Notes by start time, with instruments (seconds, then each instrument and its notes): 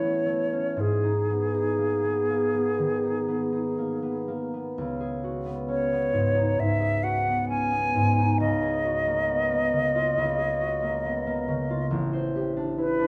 Already playing: harp A2 E3 G#3 A3 C#4 E4, flute C#5
0.02 harp B3
0.26 harp A3
0.52 harp C#4
0.77 harp G#2
0.81 flute G#4
1.04 harp D#4
1.30 harp B3
1.54 harp D#4
1.78 harp A#3
2.04 harp B3
2.30 harp A#3
2.54 harp B3
2.79 harp D#3
3.03 harp D#4
3.28 harp B3
3.52 harp D#4
3.78 harp A#3
4.03 harp B3
4.28 harp A#3
4.54 harp B3
4.78 harp C#2
5.00 harp G#4
5.24 harp F#4
5.46 harp B3
5.68 harp C#4, flute C#5
5.92 harp B3
6.13 harp G#2
6.35 harp D#4
6.57 harp G#2, flute E5
6.80 harp G#4
7.03 harp F#4, flute F#5
7.28 harp B3
7.49 harp C#4, flute G#5
7.71 harp B3
7.95 harp G#2
8.18 harp D#4
8.40 harp C#2, flute D#5
8.62 harp G#4
8.85 harp F#4
9.07 harp A#3
9.28 harp B3
9.50 harp A#3
9.73 harp C#3
9.95 harp F4
10.18 harp C#2
10.38 harp G#4
10.60 harp F#4
10.82 harp A#3
11.04 harp B3
11.27 harp A#3
11.48 harp C#3
11.70 harp F4
11.91 harp A1
12.13 harp C5
12.36 harp G4
12.57 harp D4
12.78 harp E4, flute B4
12.99 harp D4